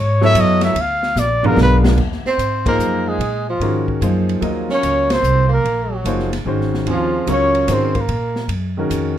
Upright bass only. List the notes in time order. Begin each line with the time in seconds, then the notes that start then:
Already playing: G#2
0.34 F#2
0.75 D2
1.16 A#1
1.56 B1
1.98 D#2
2.24 muted upright bass stroke
2.38 G#2
2.78 F#2
3.19 A#2
3.60 G#2
4.01 F#2
4.41 D#2
4.83 C#2
5.23 C2
5.64 A#1
6.04 F#1
6.45 G#1
6.86 D#2
7.27 C#2
7.68 G#2
8.08 A#2
8.48 F#2
8.90 F2